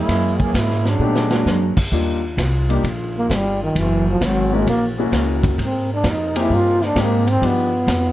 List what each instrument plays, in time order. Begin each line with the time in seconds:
Already playing: trombone section G#3 A#3 C#4 E4
0.08 upright bass F#2, kick, snare, ride
0.40 trombone section E3 A#3 C#4 G#4, kick
0.54 upright bass G#2, trombone section G#3 A#3 C#4 E4, kick, snare, hi-hat pedal, ride
0.70 snare
0.85 trombone section F#3 G#3 C#4 D4, snare
0.99 upright bass A#2, grand piano A3 B3 D4 D#4 G4
1.15 snare
1.30 grand piano G#3 A#3 D4 F#4 C#5, snare
1.45 upright bass F#2, snare, hi-hat pedal
1.76 muted upright bass stroke, kick, crash
1.91 upright bass D#2, trombone section D#3 G3 D4 F4, grand piano G3 A#3 D4 D#4 F4, kick
2.37 upright bass C2, kick, snare, hi-hat pedal, ride
2.69 grand piano G3 A#3 D4 D#4 G4, ride
2.83 upright bass A#1, kick, ride
3.18 trombone A#3
3.29 upright bass G1, kick, snare, hi-hat pedal, ride
3.35 trombone G3
3.63 trombone D#3
3.75 upright bass F#1, trombone section E3 A#3 F#4, kick, ride
3.79 trombone E3
4.10 trombone F3
4.21 upright bass G#1, trombone F#3, kick, snare, hi-hat pedal, ride
4.52 grand piano G#3 A#3 C#4 E4 F#4, trombone G#3
4.67 upright bass A#1, trombone A#3, kick, ride
4.98 grand piano G#3 A#3 C#4 E4 F#4
5.12 upright bass C#2, kick, snare, hi-hat pedal, ride
5.43 kick, ride
5.57 upright bass G#2, trombone section C3 A#4, kick, ride
5.64 trombone C4
5.93 trombone D4
6.04 upright bass F2, kick, snare, hi-hat pedal, ride
6.10 trombone D#4
6.35 grand piano A#3 C4 D#4 G4 G#4, ride
6.40 trombone E4
6.50 upright bass G2, kick
6.54 trombone F4
6.81 trombone D4, snare
6.96 upright bass G#2, grand piano G#3 A#3 C4 D#4 G4, kick, snare, hi-hat pedal, ride
7.01 trombone A#3
7.27 trombone C4, ride
7.41 upright bass G2, grand piano F3 B3 D4 D#4 G4, trombone section G3 B3 D#4 F4, kick, ride
7.46 trombone B3
7.87 upright bass F2, kick, snare, hi-hat pedal, ride